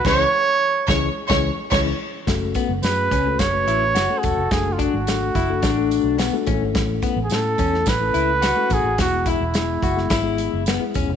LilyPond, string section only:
\new Staff \with { instrumentName = "String section" } { \time 4/4 \key fis \minor \tempo 4 = 107 <cis'' cis'''>8 r4 <cis'' cis'''>8 r16 <cis'' cis'''>8 r16 <cis'' cis'''>8 r8 | r1 | r1 | r1 |
r1 | }